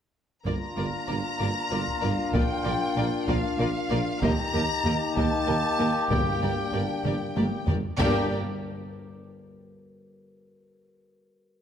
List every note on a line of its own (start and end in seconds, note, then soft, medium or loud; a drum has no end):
0.45 0.58 G1 soft
0.45 0.55 G1 soft
0.45 0.53 G2 soft
0.45 0.53 A#3 soft
0.45 4.18 A#3 medium
0.45 4.19 D4 medium
0.45 0.53 F4 soft
0.45 4.19 F4 soft
0.45 0.54 A#4 soft
0.45 0.54 D5 soft
0.45 2.31 A#5 medium
0.45 taiko medium
0.76 0.90 G1 soft
0.76 0.86 G1 soft
0.76 0.85 G2 soft
0.76 0.84 A#3 soft
0.76 0.84 F4 soft
0.76 0.85 A#4 soft
0.76 0.85 D5 soft
1.07 1.17 G1 soft
1.07 1.22 G1 soft
1.07 1.16 G2 soft
1.07 1.17 A#3 soft
1.07 1.17 F4 soft
1.07 1.16 A#4 soft
1.07 1.15 D5 soft
1.39 1.53 G1 soft
1.39 1.49 G1 soft
1.39 1.48 G2 soft
1.39 1.49 A#3 soft
1.39 1.48 F4 soft
1.39 1.47 A#4 soft
1.39 1.47 D5 soft
1.71 1.84 G1 soft
1.71 1.80 G1 soft
1.71 1.79 G2 soft
1.71 1.80 A#3 soft
1.71 1.80 F4 soft
1.71 1.79 A#4 soft
1.71 1.79 D5 soft
1.88 taiko soft
2.01 2.11 G1 soft
2.01 2.16 G1 medium
2.01 2.10 G2 medium
2.01 2.10 A#3 soft
2.01 2.10 F4 medium
2.01 2.09 A#4 soft
2.01 2.09 D5 soft
2.33 2.41 A#1 medium
2.33 2.47 A#1 medium
2.33 2.41 A#2 medium
2.33 2.42 A#3 medium
2.33 2.42 F4 medium
2.33 2.41 A#4 soft
2.33 2.41 D5 medium
2.33 3.27 G5 medium
2.33 taiko medium
2.65 2.78 A#1 medium
2.65 2.74 A#1 medium
2.65 2.73 A#2 medium
2.65 2.74 A#3 medium
2.65 2.73 F4 medium
2.65 2.73 A#4 medium
2.65 2.73 D5 soft
2.96 3.09 A#1 medium
2.96 3.05 A#1 medium
2.96 3.05 A#2 medium
2.96 3.05 A#3 medium
2.96 3.05 F4 soft
2.96 3.05 A#4 soft
2.96 3.04 D5 soft
3.27 3.36 A#1 medium
3.27 3.41 A#1 medium
3.27 3.36 A#2 medium
3.27 3.36 A#3 medium
3.27 3.35 F4 medium
3.27 3.36 A#4 medium
3.27 3.36 D5 medium
3.27 4.23 F5 medium
3.27 taiko medium
3.59 3.72 A#1 medium
3.59 3.67 A#1 medium
3.59 3.67 A#2 medium
3.59 3.67 A#3 soft
3.59 3.67 F4 medium
3.59 3.67 A#4 medium
3.59 3.67 D5 soft
3.90 3.98 A#1 medium
3.90 4.04 A#1 medium
3.90 3.99 A#2 medium
3.90 3.99 A#3 medium
3.90 3.99 F4 medium
3.90 3.98 A#4 medium
3.90 3.98 D5 medium
4.22 4.30 D#2 medium
4.22 4.35 D#2 medium
4.22 7.64 A#3 medium
4.22 4.30 A#3 medium
4.22 6.07 D#4 medium
4.22 4.30 G4 medium
4.22 7.64 G4 medium
4.22 4.31 A#4 medium
4.22 4.31 D#5 medium
4.22 5.17 A#5 loud
4.22 taiko loud
4.53 4.62 D#2 medium
4.53 4.66 D#2 medium
4.53 4.61 A#3 medium
4.53 4.62 G4 medium
4.53 4.62 A#4 medium
4.53 4.62 D#5 medium
4.84 4.93 D#2 medium
4.84 4.98 D#2 medium
4.84 4.93 A#3 medium
4.84 4.92 G4 medium
4.84 4.94 A#4 medium
4.84 4.94 D#5 medium
5.16 5.25 D#2 medium
5.16 5.29 D#2 medium
5.16 5.25 D#2 medium
5.16 5.24 A#3 medium
5.16 5.24 G4 medium
5.16 5.25 A#4 medium
5.16 5.25 D#5 medium
5.16 6.11 A5 medium
5.16 taiko medium
5.46 5.56 D#2 medium
5.46 5.61 D#2 medium
5.46 5.54 A#3 soft
5.46 5.54 G4 soft
5.46 5.55 A#4 soft
5.46 5.55 D#5 soft
5.78 5.86 D#2 medium
5.78 5.87 D#2 medium
5.78 5.92 D#2 medium
5.78 5.86 A#3 medium
5.78 5.87 G4 medium
5.78 5.87 A#4 soft
5.78 5.87 D#5 soft
6.10 6.19 G1 medium
6.10 6.24 G1 medium
6.10 6.18 G2 medium
6.10 7.01 G2 medium
6.10 6.18 A#3 soft
6.10 7.64 D4 medium
6.10 6.18 G4 medium
6.10 6.19 A#4 soft
6.10 6.19 D5 soft
6.10 7.65 G5 medium
6.10 taiko medium
6.42 6.50 G1 soft
6.42 6.55 G1 medium
6.42 6.50 G2 soft
6.42 6.50 A#3 soft
6.42 6.50 G4 soft
6.42 6.51 A#4 soft
6.42 6.51 D5 soft
6.73 6.82 G1 medium
6.73 6.87 G1 medium
6.73 6.81 G2 medium
6.73 6.81 A#3 soft
6.73 6.81 G4 soft
6.73 6.82 A#4 soft
6.73 6.82 D5 soft
6.73 taiko mid medium
7.05 7.13 G1 medium
7.05 7.18 G1 medium
7.05 7.13 G2 medium
7.05 7.13 A#3 soft
7.05 7.13 G4 medium
7.05 7.13 A#4 soft
7.05 7.13 D5 soft
7.05 taiko mid medium
7.36 7.49 G1 medium
7.36 7.45 G1 soft
7.36 7.44 G2 soft
7.36 7.44 A#3 soft
7.36 7.44 G4 soft
7.36 7.45 A#4 soft
7.36 7.45 D5 soft
7.36 taiko high medium
7.67 7.76 G1 soft
7.67 7.81 G1 medium
7.67 7.76 G2 medium
7.67 7.76 A#3 soft
7.67 7.76 G4 soft
7.67 7.75 A#4 soft
7.67 7.75 D5 soft
7.67 taiko low medium
7.98 8.35 G1 medium
7.98 8.27 G1 medium
7.98 8.34 G2 medium
7.98 8.29 G2 medium
7.98 8.34 A#3 medium
7.98 8.27 A#3 medium
7.98 8.27 D4 medium
7.98 8.34 G4 medium
7.98 8.27 G4 medium
7.98 8.34 A#4 medium
7.98 8.34 D5 medium
7.98 8.35 G5 loud
7.98 taiko loud